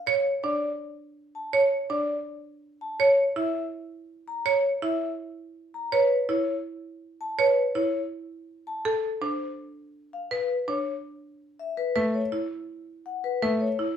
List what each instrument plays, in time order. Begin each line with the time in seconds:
Already playing: vibraphone F5
0.07 vibraphone C#5, marimba C#5
0.43 marimba D4, vibraphone D5
1.35 vibraphone A5
1.53 marimba C#5, vibraphone C#5
1.90 marimba D4, vibraphone D5
2.81 vibraphone A5
3.00 vibraphone C#5, marimba C#5
3.36 marimba E4, vibraphone E5
4.28 vibraphone A#5
4.46 vibraphone C#5, marimba C#5
4.82 marimba E4, vibraphone E5
5.74 vibraphone A#5
5.92 vibraphone B4, marimba C#5
6.29 marimba E4, vibraphone C#5
7.21 vibraphone A5
7.39 vibraphone B4, marimba C#5
7.75 marimba E4, vibraphone C#5
8.67 vibraphone A5
8.85 marimba A4, vibraphone A4
9.22 marimba D4, vibraphone C5
10.13 vibraphone F5
10.31 marimba B4, vibraphone B4
10.68 marimba D4, vibraphone C#5
11.59 vibraphone E5
11.77 vibraphone B4
11.96 grand piano A3, marimba B4
12.14 vibraphone C#5
12.32 marimba E4
13.06 vibraphone F#5
13.24 vibraphone B4
13.42 grand piano A3, marimba B4
13.60 vibraphone C#5
13.79 marimba E4